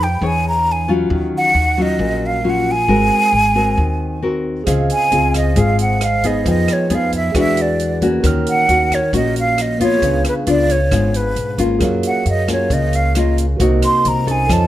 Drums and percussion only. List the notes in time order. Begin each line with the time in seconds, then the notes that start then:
4.67 kick, cross-stick, closed hi-hat
4.90 closed hi-hat
5.12 closed hi-hat
5.34 kick, cross-stick, closed hi-hat
5.56 kick, closed hi-hat
5.79 closed hi-hat
6.01 cross-stick, closed hi-hat
6.23 kick, closed hi-hat
6.46 kick, closed hi-hat
6.68 cross-stick, closed hi-hat
6.90 closed hi-hat
7.12 kick, closed hi-hat
7.35 kick, cross-stick, closed hi-hat
7.57 closed hi-hat
7.80 closed hi-hat
8.01 kick, closed hi-hat
8.24 kick, cross-stick, closed hi-hat
8.47 closed hi-hat
8.69 closed hi-hat
8.91 kick, cross-stick, closed hi-hat
9.13 kick, closed hi-hat
9.36 closed hi-hat
9.58 cross-stick, closed hi-hat
9.80 kick, closed hi-hat
10.02 kick, closed hi-hat
10.24 cross-stick, closed hi-hat
10.47 closed hi-hat
10.69 kick, closed hi-hat
10.91 kick, cross-stick, closed hi-hat
11.14 closed hi-hat
11.36 closed hi-hat
11.58 kick, closed hi-hat
11.80 kick, cross-stick, closed hi-hat
12.03 closed hi-hat
12.26 closed hi-hat
12.48 kick, cross-stick, closed hi-hat
12.70 kick, closed hi-hat
12.93 closed hi-hat
13.15 cross-stick, closed hi-hat
13.37 kick, closed hi-hat
13.60 kick, closed hi-hat
13.82 cross-stick, closed hi-hat
14.05 closed hi-hat
14.27 kick, closed hi-hat
14.49 kick, cross-stick, closed hi-hat